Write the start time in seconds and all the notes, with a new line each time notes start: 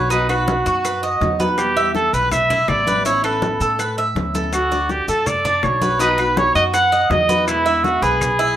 Already playing: B1 A3 D4 B4 C#5
0.10 B2 F#3 B3 D#4 F#4 B4, high bongo, maracas
0.29 F#3 B3 D#4 F#4 B4, high bongo, high conga, claves, maracas
0.48 high bongo, high conga, maracas
0.66 F#2 F#4, high bongo, high conga, maracas
0.84 B4, muted nylon-string guitar stroke, high bongo, high conga, claves, maracas
1.03 D#5, high bongo, high conga, maracas
1.21 E2 F#3 B3 D#4 F#4, high bongo, low bongo, high conga, maracas
1.39 F#3 B3 D#4 F#4 B4, high conga, maracas
1.57 B2 E3 G3 B3 E4 G4, high bongo, high conga, claves, maracas
1.76 E3 G3 B3 E4 E5, high bongo, high conga, maracas
1.95 A4, high bongo, high conga, maracas
2.13 B1 B4, high bongo, high conga, maracas
2.31 E5, muted nylon-string guitar stroke, high bongo, high conga, low conga, claves, maracas
2.50 E4, high bongo, high conga, low conga, maracas
2.68 A1 E3 G3 B3 E4 D5, high bongo, low bongo, high conga, claves, maracas
2.87 E3 G3 B3 E4 B4, high conga, maracas
3.05 E3 B3 C#4 E4 C#5, high bongo, high conga, maracas
3.23 B3 C#4 E4 A4 B4, high bongo, high conga, claves, maracas
3.42 high bongo, high conga, maracas
3.60 A2 A4, high bongo, high conga, maracas
3.79 B4, muted nylon-string guitar stroke, high bongo, high conga, claves, maracas
3.98 E5, high bongo, high conga, maracas
4.15 D2 E3 B3 C#4 E4, high bongo, low bongo, high conga, maracas
4.35 B3 C#4 E4 A4, high conga, maracas
4.53 D3 A3 D4 F#4, high bongo, high conga, claves, maracas
4.71 A3 D4 F#4 D5, high bongo, high conga, maracas
4.89 G4, high bongo, high conga, maracas
5.08 F#2 A4, high bongo, high conga, maracas
5.26 D5, muted nylon-string guitar stroke, high bongo, high conga, low conga, claves, maracas
5.45 D4, high bongo, high conga, low conga, maracas
5.63 B1 D3 A3 D4 F#4 C#5, high bongo, low bongo, high conga, claves, maracas
5.81 A3 D4 F#4 B4, high conga, maracas
6.00 B2 F#3 B3 D#4 F#4 B4, high bongo, high conga, maracas
6.18 F#3 B3 D#4 F#4 B4, high bongo, high conga, claves, maracas
6.37 C#5, high bongo, high conga, maracas
6.55 F#2 F#4 D#5, high bongo, high conga, maracas
6.74 B4 F#5, muted nylon-string guitar stroke, high bongo, high conga, claves, maracas
6.92 D#5, high bongo, high conga, maracas
7.10 E2 F#3 B3 D#4 F#4 D#5, high bongo, low bongo, high conga, maracas
7.29 F#3 B3 D#4 F#4 B4, high conga, maracas
7.47 B2 D3 G#3 B3 E4, high bongo, high conga, claves, maracas
7.66 D3 G#3 B3 E4 E5, high bongo, high conga, maracas
7.84 F#4, high bongo, high conga, maracas
8.02 B1 G#4 B4, high bongo, high conga, maracas
8.21 muted nylon-string guitar stroke, high bongo, high conga, low conga, claves, maracas
8.39 E4, high bongo, high conga, maracas